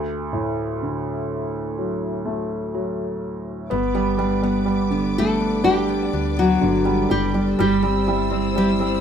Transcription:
Already playing: grand piano D2
0.33 grand piano A2
0.82 grand piano D3
1.78 grand piano F#3
2.25 grand piano A3
2.74 grand piano F#3
3.70 fm bass G1, steel-string acoustic guitar G2, grand piano B3, string section B4 D5 D6
3.95 grand piano G3, steel-string acoustic guitar B3
4.18 grand piano G3, steel-string acoustic guitar D4
4.42 grand piano G3, steel-string acoustic guitar B3
4.65 grand piano G3, steel-string acoustic guitar D4
4.90 grand piano D3, steel-string acoustic guitar B3
5.18 nylon-string guitar A3 A4
5.40 steel-string acoustic guitar D4
5.64 nylon-string guitar G3 G4, grand piano D4
5.89 steel-string acoustic guitar B3
6.13 fm bass D2, steel-string acoustic guitar D4
6.36 nylon-string guitar F#3 F#4, steel-string acoustic guitar B3
6.61 fm bass G1, grand piano D3, steel-string acoustic guitar D4
6.85 grand piano G3, steel-string acoustic guitar B3
7.09 fm bass F#1, grand piano G3, nylon-string guitar G3 G4, steel-string acoustic guitar G4
7.34 grand piano G3, steel-string acoustic guitar D4
7.59 fm bass G1, grand piano G3, steel-string acoustic guitar G3, nylon-string guitar G3 G4, string section C5 E6
7.82 grand piano G3, steel-string acoustic guitar C4
8.07 grand piano G3, steel-string acoustic guitar E4
8.30 grand piano G3, steel-string acoustic guitar C4
8.55 grand piano G3, nylon-string guitar G3 G4, steel-string acoustic guitar E4
8.79 grand piano G3, steel-string acoustic guitar C4

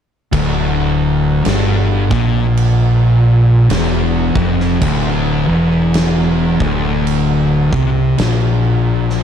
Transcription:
0.32 fingered electric bass D1, distorted electric guitar D2, kick, crash
1.45 fingered electric bass G1, distorted electric guitar G2, snare, crash
2.11 fingered electric bass A#1, distorted electric guitar A#2, kick, snare
2.57 crash
3.69 fingered electric bass E1, distorted electric guitar E2, snare, crash
4.35 fingered electric bass F1, distorted electric guitar F2, kick
4.60 snare
4.82 fingered electric bass D1, distorted electric guitar D2, kick, crash
5.48 fingered electric bass E1, distorted electric guitar E2
5.94 snare, crash
6.60 fingered electric bass D1, distorted electric guitar D2, kick
7.07 crash
7.72 fingered electric bass C2, distorted electric guitar C3, kick
8.18 fingered electric bass A#1, distorted electric guitar A#2, snare, crash
9.10 snare

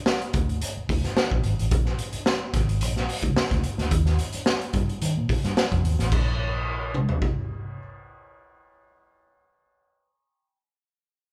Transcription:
0.06 snare
0.22 closed hi-hat
0.33 fingered electric bass D2, kick, closed hi-hat
0.49 closed hi-hat
0.61 closed hi-hat
0.77 muted fingered electric bass stroke
0.89 fingered electric bass D2, kick, open hi-hat
1.04 snare, closed hi-hat
1.17 snare
1.31 fingered electric bass A#1, kick
1.43 fingered electric bass G#1, closed hi-hat
1.59 fingered electric bass A1, closed hi-hat
1.71 fingered electric bass A#1, kick, closed hi-hat
1.85 snare
1.99 closed hi-hat
2.13 muted fingered electric bass stroke, closed hi-hat
2.26 snare
2.54 fingered electric bass G#1, kick, snare, closed hi-hat
2.69 closed hi-hat
2.81 fingered electric bass A#1, closed hi-hat
2.96 snare
3.09 open hi-hat
3.22 fingered electric bass C#2, kick, closed hi-hat
3.36 muted fingered electric bass stroke, snare
3.51 fingered electric bass D2, kick, snare, closed hi-hat
3.64 closed hi-hat
3.78 fingered electric bass D2, snare, closed hi-hat
3.91 fingered electric bass D#2, kick, closed hi-hat
4.06 snare, closed hi-hat
4.19 closed hi-hat
4.32 muted fingered electric bass stroke, closed hi-hat
4.46 snare
4.61 closed hi-hat
4.73 fingered electric bass G2, kick, closed hi-hat
4.89 closed hi-hat
5.02 fingered electric bass D#3, closed hi-hat
5.17 fingered electric bass A#2
5.29 kick, open hi-hat
5.44 fingered electric bass G2, snare, closed hi-hat
5.57 snare
5.72 fingered electric bass F2, kick, closed hi-hat
5.84 fingered electric bass D#2, closed hi-hat
5.99 fingered electric bass A1, snare, closed hi-hat
6.12 fingered electric bass A#1, kick, crash
6.94 mid tom
7.09 floor tom
7.22 kick

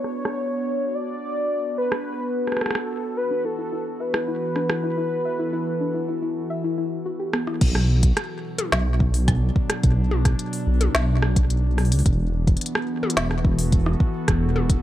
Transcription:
Already playing: ambient pad B3 D4 E4 F#4 B4, soft synth lead C#5
0.04 cross-stick
0.25 cross-stick
0.95 soft synth lead D5
1.78 soft synth lead B4
1.92 cross-stick
2.47 cross-stick
2.52 cross-stick
2.57 cross-stick
2.61 soft synth lead A4, cross-stick
2.66 cross-stick
2.71 cross-stick
2.75 cross-stick
3.17 ambient pad E3, soft synth lead B4
3.31 synth arpeggio sound D4
3.45 synth arpeggio sound E4, soft synth lead A4
3.58 synth arpeggio sound E4
3.72 synth arpeggio sound E4
3.90 ambient pad A4
4.00 soft synth lead B4, synth arpeggio sound E5
4.14 synth arpeggio sound E4, cross-stick
4.28 synth arpeggio sound E4
4.56 synth arpeggio sound D4, cross-stick
4.70 synth arpeggio sound E4, cross-stick
4.84 synth arpeggio sound E4
4.97 synth arpeggio sound E4
5.25 synth arpeggio sound E5
5.39 synth arpeggio sound E4
5.53 synth arpeggio sound E4
5.81 synth arpeggio sound D4
5.95 synth arpeggio sound E4
6.08 synth arpeggio sound E4
6.22 synth arpeggio sound E4
6.50 synth arpeggio sound E5
6.64 synth arpeggio sound E4
6.78 synth arpeggio sound E4
7.06 synth arpeggio sound F#4
7.19 synth arpeggio sound G4
7.33 synth arpeggio sound B3, cross-stick
7.47 synth arpeggio sound E4, cross-stick
7.61 detuned saw bass B1, ambient pad B2, kick, closed hi-hat, crash
7.75 cross-stick
8.03 ambient pad F#3, kick, closed hi-hat
8.17 cross-stick, closed hi-hat
8.58 closed hi-hat, high tom
8.68 ambient pad D4
8.72 detuned saw bass B1, cross-stick, snare, closed hi-hat
9.00 kick
9.14 open hi-hat
9.28 kick, cross-stick, closed hi-hat
9.56 kick
9.70 cross-stick, closed hi-hat
9.83 detuned saw bass B1, kick, closed hi-hat
10.11 high tom
10.25 kick, cross-stick, closed hi-hat
10.39 closed hi-hat
10.53 open hi-hat
10.67 detuned saw bass B1
10.81 closed hi-hat, high tom
10.95 detuned saw bass B1, snare, closed hi-hat
11.22 cross-stick
11.36 kick, closed hi-hat
11.50 closed hi-hat
11.78 cross-stick, open hi-hat
11.85 open hi-hat
11.92 detuned saw bass C#2, closed hi-hat, open hi-hat
11.99 open hi-hat
12.06 detuned saw bass E1, ambient pad E3, kick, closed hi-hat
12.16 ambient pad B3
12.46 ambient pad F#4, kick, closed hi-hat
12.57 closed hi-hat
12.61 closed hi-hat
12.66 closed hi-hat
12.75 ambient pad A4, cross-stick
13.03 high tom
13.10 closed hi-hat
13.17 detuned saw bass E1, snare, closed hi-hat
13.31 cross-stick
13.45 kick
13.59 open hi-hat
13.72 kick, closed hi-hat
13.86 cross-stick
14.00 kick
14.28 detuned saw bass E1, kick, cross-stick, closed hi-hat
14.56 high tom
14.70 kick, closed hi-hat

